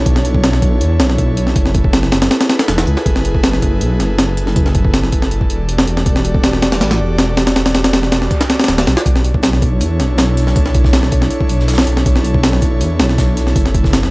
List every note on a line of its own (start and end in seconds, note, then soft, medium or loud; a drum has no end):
0.00 1.52 D4 medium
0.00 5.27 E4 medium
0.00 1.52 A4 medium
0.00 1.52 C#5 medium
0.06 0.61 B1 loud
0.06 kick loud
0.06 closed hi-hat medium
0.16 snare medium
0.25 closed hi-hat medium
0.34 kick loud
0.44 snare loud
0.44 closed hi-hat medium
0.53 snare medium
0.62 0.82 B1 medium
0.62 kick medium
0.62 closed hi-hat medium
0.81 1.01 E2 medium
0.81 closed hi-hat medium
1.00 1.55 B1 loud
1.00 snare loud
1.00 closed hi-hat medium
1.10 snare soft
1.18 kick medium
1.18 closed hi-hat medium
1.37 closed hi-hat medium
1.47 snare soft
1.56 2.11 F#1 loud
1.56 5.27 G#4 medium
1.56 9.02 A4 medium
1.56 5.27 B4 medium
1.56 kick loud
1.56 closed hi-hat medium
1.66 snare soft
1.74 kick medium
1.74 closed hi-hat medium
1.84 kick loud
1.93 snare loud
1.93 closed hi-hat medium
2.03 snare medium
2.12 2.29 F#1 medium
2.12 snare loud
2.12 closed hi-hat medium
2.22 snare loud
2.22 closed hi-hat medium
2.31 snare loud
2.31 closed hi-hat medium
2.41 snare loud
2.41 closed hi-hat medium
2.49 snare loud
2.49 closed hi-hat medium
2.59 snare loud
2.59 closed hi-hat medium
2.68 2.85 E1 medium
2.68 snare loud
2.68 closed hi-hat medium
2.78 snare loud
2.78 closed hi-hat medium
2.87 2.96 C#2 loud
2.87 closed hi-hat medium
2.97 snare medium
3.06 3.61 F#1 loud
3.06 kick loud
3.06 closed hi-hat medium
3.16 snare medium
3.25 closed hi-hat medium
3.35 kick medium
3.43 snare loud
3.43 closed hi-hat medium
3.53 snare medium
3.62 3.82 F#1 medium
3.62 kick medium
3.62 closed hi-hat medium
3.81 4.01 B1 medium
3.81 closed hi-hat medium
4.00 4.55 F#1 loud
4.00 snare soft
4.00 closed hi-hat medium
4.19 snare loud
4.19 closed hi-hat medium
4.37 closed hi-hat medium
4.47 snare soft
4.56 5.11 F#1 loud
4.56 kick loud
4.56 closed hi-hat medium
4.66 snare soft
4.75 kick medium
4.75 closed hi-hat medium
4.85 kick loud
4.94 snare loud
4.94 closed hi-hat medium
5.03 snare medium
5.12 5.51 F#1 medium
5.12 kick loud
5.12 closed hi-hat medium
5.22 snare medium
5.31 9.02 F#4 medium
5.31 9.02 G4 medium
5.31 9.02 D5 medium
5.31 closed hi-hat medium
5.41 kick medium
5.50 5.86 E1 medium
5.50 closed hi-hat medium
5.69 closed hi-hat medium
5.78 snare loud
5.87 6.04 E1 medium
5.87 closed hi-hat medium
5.97 snare medium
6.06 6.61 E1 loud
6.06 kick loud
6.06 closed hi-hat medium
6.16 snare medium
6.25 closed hi-hat medium
6.35 kick medium
6.44 snare loud
6.44 closed hi-hat medium
6.53 snare medium
6.62 6.82 E1 medium
6.62 snare loud
6.62 closed hi-hat medium
6.72 snare loud
6.72 closed hi-hat medium
6.81 7.01 A1 medium
6.81 snare loud
6.81 closed hi-hat medium
6.91 snare loud
6.91 closed hi-hat medium
6.99 7.54 E1 loud
7.18 snare loud
7.18 closed hi-hat medium
7.37 snare loud
7.37 closed hi-hat medium
7.47 snare loud
7.47 closed hi-hat medium
7.56 8.11 E1 loud
7.56 snare loud
7.56 closed hi-hat medium
7.56 noise sweep medium
7.66 snare loud
7.66 closed hi-hat medium
7.75 snare loud
7.75 closed hi-hat medium
7.84 snare loud
7.84 closed hi-hat medium
7.93 snare loud
7.93 closed hi-hat medium
8.03 snare medium
8.12 8.29 E1 medium
8.12 snare loud
8.12 closed hi-hat medium
8.22 snare soft
8.31 kick medium
8.31 closed hi-hat medium
8.41 snare loud
8.41 closed hi-hat medium
8.50 snare loud
8.50 closed hi-hat medium
8.59 snare medium
8.59 closed hi-hat medium
8.64 snare medium
8.64 closed hi-hat medium
8.68 8.85 D1 medium
8.68 snare loud
8.68 closed hi-hat medium
8.78 snare loud
8.78 closed hi-hat medium
8.87 8.96 B1 loud
8.87 snare loud
8.87 closed hi-hat medium
8.97 snare loud
8.97 closed hi-hat medium
9.05 9.61 B1 loud
9.05 13.52 D4 medium
9.05 14.11 E4 medium
9.05 14.11 A4 medium
9.05 13.52 C#5 medium
9.05 kick loud
9.05 closed hi-hat medium
9.05 shaker medium
9.16 snare medium
9.24 closed hi-hat medium
9.24 shaker medium
9.34 kick medium
9.43 snare loud
9.43 closed hi-hat medium
9.43 shaker medium
9.53 snare medium
9.62 9.82 B1 medium
9.62 kick medium
9.62 closed hi-hat medium
9.62 shaker medium
9.81 10.01 E2 medium
9.81 closed hi-hat medium
9.81 shaker medium
10.00 10.55 B1 loud
10.00 snare soft
10.00 closed hi-hat medium
10.00 shaker medium
10.18 snare loud
10.18 closed hi-hat medium
10.18 shaker medium
10.37 snare soft
10.37 closed hi-hat medium
10.37 shaker medium
10.47 snare soft
10.56 11.11 B1 loud
10.56 kick loud
10.56 closed hi-hat medium
10.56 shaker medium
10.66 snare soft
10.74 kick loud
10.74 closed hi-hat medium
10.74 shaker medium
10.84 kick medium
10.84 snare medium
10.93 snare loud
10.93 closed hi-hat medium
10.93 shaker medium
11.03 snare medium
11.12 11.29 B1 medium
11.12 kick loud
11.12 closed hi-hat medium
11.12 shaker medium
11.22 snare medium
11.31 closed hi-hat medium
11.31 shaker medium
11.41 kick medium
11.49 11.86 B1 medium
11.49 closed hi-hat medium
11.49 shaker medium
11.60 snare soft
11.68 snare medium
11.68 closed hi-hat medium
11.68 shaker medium
11.73 snare loud
11.73 shaker medium
11.78 snare loud
11.78 snare medium
11.78 shaker medium
11.82 snare medium
11.82 shaker medium
11.87 12.04 B1 medium
11.87 closed hi-hat medium
11.87 shaker medium
11.97 snare medium
12.05 12.61 B1 loud
12.05 kick loud
12.05 closed hi-hat medium
12.05 shaker medium
12.16 snare medium
12.25 closed hi-hat medium
12.25 shaker medium
12.34 kick medium
12.43 snare loud
12.43 closed hi-hat medium
12.43 shaker medium
12.53 snare medium
12.61 12.83 B1 medium
12.61 kick loud
12.61 closed hi-hat medium
12.61 shaker medium
12.81 13.01 E2 medium
12.81 closed hi-hat medium
12.81 shaker medium
12.99 13.54 B1 loud
12.99 snare loud
12.99 closed hi-hat medium
12.99 shaker medium
13.09 snare soft
13.18 kick medium
13.18 snare loud
13.18 closed hi-hat medium
13.18 shaker medium
13.37 snare soft
13.37 closed hi-hat medium
13.37 shaker medium
13.47 snare soft
13.56 14.11 F#1 loud
13.56 14.11 G#4 medium
13.56 14.11 B4 medium
13.56 kick loud
13.56 closed hi-hat medium
13.56 shaker medium
13.66 snare soft
13.75 kick loud
13.75 closed hi-hat medium
13.75 shaker medium
13.84 kick medium
13.84 snare medium
13.93 snare loud
13.93 closed hi-hat medium
13.93 shaker medium
14.03 snare medium